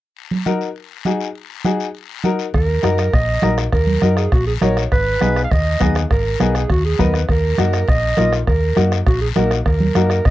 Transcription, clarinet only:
2.54 3.16 A#4 medium
3.14 3.58 D#5 loud
3.73 4.14 A#4 medium
4.17 4.34 G#4 medium
4.33 4.46 F#4 medium
4.47 4.54 G#4 medium
4.61 4.82 A#4 medium
4.92 5.41 B4 loud
5.44 5.52 F5 medium
5.51 5.95 D#5 loud
6.11 6.52 A#4 medium
6.56 6.69 G#4 medium
6.71 6.84 F#4 medium
6.85 6.99 G#4 medium
7.00 7.21 A#4 medium
7.30 7.91 A#4 medium
7.90 8.33 D#5 loud
8.47 8.89 A#4 medium
9.07 9.21 F#4 medium
9.21 9.28 G#4 medium
9.36 9.57 A#4 medium
9.66 10.28 A#4 medium
10.26 10.30 D#5 loud

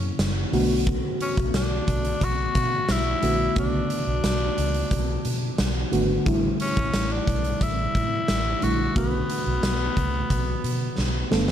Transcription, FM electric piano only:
0.00 0.55 C#3 medium
0.00 0.55 F#3 medium
0.00 0.55 A#3 medium
0.00 0.55 C#4 medium
0.52 1.67 D3 loud
0.52 1.67 A3 medium
0.52 1.67 B3 medium
0.52 1.67 F#4 loud
3.22 3.51 D3 medium
3.22 3.51 A3 medium
3.22 3.51 B3 medium
3.22 3.51 F#4 medium
3.56 3.63 C#3 medium
3.56 4.70 A3 medium
3.56 4.70 B3 medium
3.56 4.71 F#4 medium
3.62 4.73 D3 medium
5.92 6.20 D3 loud
5.92 6.21 A3 medium
5.92 6.21 B3 medium
5.92 6.21 F#4 loud
6.25 7.39 D3 medium
6.25 7.40 G3 medium
6.25 7.40 A3 medium
6.25 7.40 E4 loud
8.61 8.90 D3 medium
8.61 8.91 G3 medium
8.61 8.91 A3 medium
8.61 8.91 E4 medium
8.95 10.09 D3 medium
8.95 10.09 A3 medium
8.95 10.10 B3 medium
8.95 10.10 F#4 medium
11.31 11.52 D3 medium
11.31 11.52 A3 medium
11.31 11.52 B3 medium
11.31 11.52 A4 loud

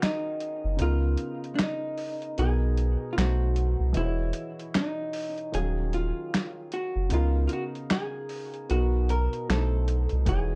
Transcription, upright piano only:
0.00 0.76 D#3 medium
0.00 0.76 C#4 medium
0.00 0.78 F#4 soft
0.00 0.78 G#4 medium
0.00 0.77 F5 medium
0.77 2.33 C#3 medium
0.77 2.34 B3 medium
0.77 2.34 D#4 medium
0.81 2.35 F4 medium
0.81 2.36 A#4 medium
2.38 3.15 B2 medium
2.38 3.17 B3 medium
2.38 3.17 D#4 medium
2.38 3.18 A#4 medium
3.17 3.96 B2 medium
3.17 3.96 A3 medium
3.17 3.96 D#4 medium
3.17 3.97 C5 medium
3.93 5.49 E3 medium
3.93 5.50 F#4 medium
3.93 5.49 D#5 medium
3.97 5.51 G#4 medium
3.97 4.04 C5 medium
4.05 5.55 C#5 medium
5.52 7.07 D#3 medium
5.52 7.08 C#4 medium
5.52 7.09 F5 medium
5.56 7.09 F#3 medium
5.56 7.10 G#4 medium
7.09 8.65 C#3 medium
7.09 8.66 B3 medium
7.09 8.66 D#4 medium
7.13 8.68 A#4 medium
7.13 8.67 F5 medium
8.69 9.47 B2 medium
8.69 9.49 B3 medium
8.69 9.49 D#4 medium
8.69 9.49 A#4 medium
9.49 10.27 B2 medium
9.49 10.28 A3 medium
9.49 9.57 D4 soft
9.49 10.29 C5 medium
9.57 10.25 D#4 medium
10.26 10.55 E3 medium
10.26 10.55 D#4 medium
10.26 10.55 F#4 medium
10.26 10.55 G#4 medium
10.31 10.55 C#5 medium

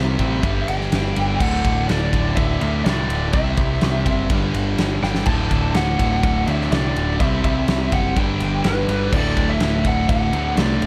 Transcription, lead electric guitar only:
0.00 0.68 E5 loud
0.68 1.36 G5 loud
1.40 1.90 F#5 loud
1.87 2.33 D5 loud
2.36 2.81 E5 loud
2.85 3.30 D5 medium
3.34 4.26 E5 loud
5.04 5.26 G5 medium
5.27 5.72 A5 loud
5.75 6.23 F#5 loud
6.24 6.48 F#5 loud
6.47 6.70 E5 loud
6.72 7.20 D5 medium
7.21 7.44 E5 loud
7.45 7.90 E5 loud
7.93 8.18 F#5 loud
8.18 8.67 G5 loud
8.66 9.10 B4 medium
9.14 9.50 D5 loud
9.51 9.84 E5 loud
9.87 10.08 F#5 medium
10.10 10.54 F#5 loud
10.58 10.86 D5 medium

